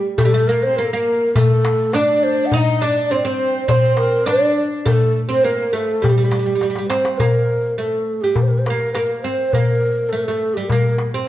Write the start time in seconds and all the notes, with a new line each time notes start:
0.18 A3 A4, darbuka dum
0.25 G3
0.34 A3
0.48 A#3 A#4, darbuka ka
0.63 C4 C5
0.76 A#3 A#4, darbuka ka
0.85 A4
0.92 A#3 A#4
1.35 A3 A4, darbuka dum
1.51 darbuka ka
1.65 darbuka tek
1.93 D4 D5, darbuka tek
2.23 C5
2.45 F#5
2.51 D#4 F#5, darbuka dum
2.57 D#5
2.81 D4 D#5
2.86 D5
3.10 C4 C5, darbuka ka
3.16 D5
3.25 C4 C5
3.68 C4 C5 D5, darbuka dum
3.84 darbuka ka
3.97 A#4, darbuka tek
4.26 D4 D5, darbuka tek
4.86 A3 A#4, darbuka dum
4.90 A4
5.02 darbuka ka
5.29 C4 C5
5.43 A#3 A#4, darbuka ka
5.59 darbuka ka
5.73 A3 A4, darbuka ka
5.90 darbuka ka
6.02 G3 A4, darbuka dum
6.09 G3 G4
6.18 G3
6.24 G3
6.31 G3, darbuka tek
6.39 G3
6.46 G3
6.55 G3
6.61 G3, darbuka tek
6.70 G3
6.75 G3, darbuka ka
6.89 C4 C5, darbuka tek
7.05 darbuka ka
7.18 A#3 A#4, darbuka dum
7.48 darbuka ka
7.78 A3 A4
8.22 G3 G4
8.36 A#4, darbuka dum
8.42 C5
8.48 A#4, darbuka ka
8.59 C5
8.66 A#3 A#4, darbuka tek
8.93 A#3 A#4 B4, darbuka tek
9.21 C4 C5
9.53 A#3 A#4, darbuka dum
9.82 darbuka ka
10.09 A3 A4
10.17 A#4
10.23 A4
10.28 A3
10.40 darbuka ka
10.54 G3 G4
10.67 A#4, darbuka dum
10.72 A#3
10.84 darbuka ka
10.98 darbuka tek
11.14 C4